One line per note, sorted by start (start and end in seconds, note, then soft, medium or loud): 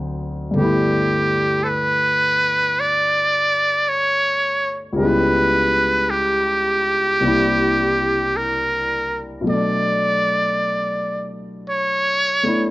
0.00 0.54 D2 soft
0.00 0.52 D3 soft
0.00 0.57 F#3 soft
0.00 0.58 C4 soft
0.00 0.59 D#4 soft
0.51 4.94 G2 soft
0.51 4.95 D3 soft
0.56 4.97 A3 soft
0.56 4.98 B3 soft
0.56 1.65 G4 medium
0.62 5.00 E4 soft
1.63 1.67 A4 medium
1.63 2.82 B4 medium
2.80 3.90 D5 medium
3.89 4.80 C#5 medium
4.93 7.18 C#2 soft
4.93 7.19 C#3 soft
4.97 7.20 G3 soft
4.97 6.12 B4 medium
5.01 7.22 B3 soft
5.01 7.23 E4 medium
6.10 8.38 G4 medium
7.20 9.45 C2 soft
7.20 9.45 C3 soft
7.20 9.46 A#3 soft
7.20 9.47 D4 soft
7.25 9.47 E4 soft
8.37 9.29 A#4 medium
9.41 12.71 B2 soft
9.41 12.71 F#3 soft
9.47 12.42 A3 soft
9.47 11.30 D5 medium
9.52 12.44 D4 soft
11.70 12.71 C#5 medium
12.44 12.71 A3 soft
12.44 12.71 B3 soft
12.44 12.71 D4 soft
12.44 12.71 E4 soft